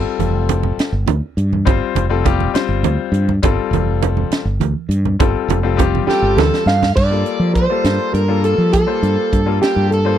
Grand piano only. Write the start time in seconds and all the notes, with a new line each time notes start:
Already playing: G3 C4 F4 A4
1.65 G3 C4 F4 C5
2.09 G3 C4 F4 A4
2.24 G3 C4 F4 G4
2.54 G3 C4 F4 C5
3.43 G3 C4 F4 A4
5.19 G3 C4 F4 A4
5.63 G3 C4 F4 A4
5.76 G3 C4 F4 G4
6.07 G3 C4 F4 A4
7.10 G3 A#3 F4 A4
7.70 G3 A#3 F4 A4
8.28 G3 A#3 F4 A4
8.87 G3 A#3 F4 C5
9.46 G3 A#3 F4 A4
10.05 G3 A#3 F4 C5